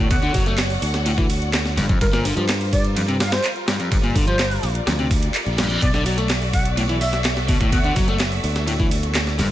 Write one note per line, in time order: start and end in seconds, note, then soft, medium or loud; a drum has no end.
0.00 0.28 D2 medium
0.00 1.74 B3 medium
0.00 1.74 F#4 medium
0.00 5.78 A4 medium
0.00 1.74 C#5 medium
0.00 1.74 D5 medium
0.10 0.15 B2 medium
0.10 0.18 F#5 medium
0.10 1.76 F#5 medium
0.10 kick loud
0.10 closed hi-hat soft
0.10 ride medium
0.22 0.33 D3 loud
0.22 0.30 F#5 medium
0.22 closed hi-hat soft
0.34 0.76 F#1 medium
0.34 0.46 F#3 medium
0.34 kick loud
0.34 open hi-hat medium
0.34 ride medium
0.46 0.54 A3 loud
0.46 closed hi-hat medium
0.58 snare loud
0.58 clap loud
0.58 closed hi-hat soft
0.58 ride loud
0.70 open hi-hat medium
0.82 1.79 D2 medium
0.82 open hi-hat medium
0.82 ride medium
0.94 snare medium
0.94 closed hi-hat medium
1.06 1.11 A2 loud
1.06 closed hi-hat medium
1.06 ride medium
1.18 1.26 E3 medium
1.18 kick medium
1.18 closed hi-hat soft
1.30 open hi-hat medium
1.30 ride medium
1.42 closed hi-hat medium
1.54 snare loud
1.54 clap loud
1.54 closed hi-hat soft
1.54 ride medium
1.66 snare soft
1.66 closed hi-hat soft
1.77 1.93 G1 medium
1.77 1.85 G2 loud
1.77 5.78 G3 medium
1.77 5.78 F4 medium
1.77 5.78 A#4 medium
1.77 3.66 C5 medium
1.77 snare soft
1.77 open hi-hat medium
1.77 ride medium
1.89 2.00 F2 medium
1.89 kick loud
1.89 closed hi-hat medium
2.01 2.31 G1 loud
2.01 2.06 G2 medium
2.01 2.09 A#4 loud
2.01 kick loud
2.01 closed hi-hat medium
2.01 ride medium
2.13 2.24 A#2 loud
2.13 2.21 A#4 medium
2.13 snare medium
2.13 closed hi-hat soft
2.25 2.36 D3 medium
2.25 open hi-hat medium
2.25 ride medium
2.37 3.38 G2 loud
2.37 2.45 F3 loud
2.37 closed hi-hat medium
2.49 snare loud
2.49 clap loud
2.49 closed hi-hat medium
2.49 ride medium
2.61 open hi-hat medium
2.72 2.84 D5 medium
2.72 kick medium
2.72 open hi-hat medium
2.72 ride medium
2.85 closed hi-hat medium
2.96 3.01 F2 loud
2.96 closed hi-hat medium
2.96 ride medium
3.08 3.16 C3 medium
3.08 closed hi-hat soft
3.08 ride soft
3.20 3.30 F5 loud
3.20 snare loud
3.20 open hi-hat medium
3.20 ride medium
3.32 3.44 C5 medium
3.32 snare loud
3.32 closed hi-hat medium
3.32 ride medium
3.44 clap loud
3.44 closed hi-hat medium
3.44 ride medium
3.56 closed hi-hat soft
3.68 3.76 G2 loud
3.68 9.36 D5 medium
3.68 snare loud
3.68 open hi-hat medium
3.68 ride medium
3.80 3.90 F2 medium
3.80 closed hi-hat medium
3.91 4.57 G1 loud
3.91 3.96 G2 medium
3.91 kick loud
3.91 closed hi-hat medium
3.91 ride medium
4.03 4.14 A#2 loud
4.03 closed hi-hat soft
4.15 4.27 D3 medium
4.15 kick loud
4.15 open hi-hat medium
4.15 ride medium
4.27 4.35 F3 loud
4.27 4.63 C5 loud
4.27 closed hi-hat medium
4.39 snare loud
4.39 clap loud
4.39 closed hi-hat medium
4.39 ride medium
4.51 open hi-hat medium
4.63 4.79 A#1 medium
4.63 open hi-hat medium
4.63 ride medium
4.75 closed hi-hat medium
4.87 5.28 D2 medium
4.87 4.92 F2 loud
4.87 snare loud
4.87 closed hi-hat medium
4.87 ride medium
4.87 reverse cymbal medium
4.99 5.07 C3 medium
4.99 closed hi-hat soft
5.11 kick medium
5.11 open hi-hat medium
5.11 ride medium
5.23 closed hi-hat medium
5.35 clap loud
5.35 closed hi-hat medium
5.35 ride medium
5.46 5.76 A#1 loud
5.46 closed hi-hat soft
5.58 5.66 G2 loud
5.58 snare loud
5.58 open hi-hat medium
5.58 ride medium
5.70 5.81 F2 medium
5.70 closed hi-hat medium
5.82 7.49 B1 medium
5.82 5.87 B2 medium
5.82 9.36 B3 medium
5.82 9.36 F#4 medium
5.82 9.51 A4 medium
5.82 9.36 C#5 medium
5.82 5.90 D5 loud
5.82 9.36 E5 medium
5.82 kick loud
5.82 closed hi-hat medium
5.82 ride medium
5.94 6.05 D3 loud
5.94 6.02 D5 medium
5.94 snare medium
5.94 closed hi-hat soft
6.06 6.17 F#3 medium
6.06 open hi-hat medium
6.06 ride medium
6.18 6.26 A3 loud
6.18 closed hi-hat medium
6.30 snare loud
6.30 clap loud
6.30 closed hi-hat medium
6.30 ride medium
6.42 open hi-hat medium
6.53 6.65 F#5 loud
6.53 kick medium
6.53 open hi-hat medium
6.53 ride medium
6.65 closed hi-hat medium
6.77 6.82 A2 loud
6.77 closed hi-hat medium
6.77 ride medium
6.89 6.97 E3 medium
6.89 closed hi-hat soft
6.89 ride soft
7.01 7.09 E5 loud
7.01 open hi-hat medium
7.13 7.21 E5 medium
7.13 snare soft
7.13 closed hi-hat medium
7.25 snare loud
7.25 clap loud
7.25 closed hi-hat medium
7.25 ride medium
7.37 snare soft
7.37 closed hi-hat soft
7.48 7.90 D2 medium
7.48 7.56 B2 loud
7.48 kick loud
7.48 open hi-hat medium
7.48 ride medium
7.61 7.71 A2 medium
7.61 kick loud
7.61 closed hi-hat medium
7.72 7.77 B2 medium
7.72 7.80 F#5 medium
7.72 kick loud
7.72 closed hi-hat medium
7.72 ride medium
7.84 7.95 D3 loud
7.84 7.92 F#5 medium
7.84 closed hi-hat soft
7.96 8.38 F#1 medium
7.96 8.08 F#3 medium
7.96 kick loud
7.96 open hi-hat medium
7.96 ride medium
8.08 8.16 A3 loud
8.08 closed hi-hat medium
8.20 snare loud
8.20 clap loud
8.20 closed hi-hat medium
8.20 ride medium
8.32 open hi-hat medium
8.44 9.40 D2 medium
8.44 open hi-hat medium
8.44 ride medium
8.56 snare medium
8.56 closed hi-hat medium
8.67 8.72 A2 loud
8.67 closed hi-hat medium
8.67 ride medium
8.80 8.87 E3 medium
8.80 kick loud
8.80 closed hi-hat soft
8.91 open hi-hat medium
8.91 ride medium
9.03 closed hi-hat medium
9.15 snare loud
9.15 clap loud
9.15 closed hi-hat medium
9.15 ride medium
9.27 snare soft
9.27 closed hi-hat soft
9.39 9.51 G1 medium
9.39 9.47 G2 loud
9.39 9.51 G3 medium
9.39 9.51 F4 medium
9.39 9.51 A#4 medium
9.39 9.51 C5 medium
9.39 snare soft
9.39 open hi-hat medium
9.39 ride medium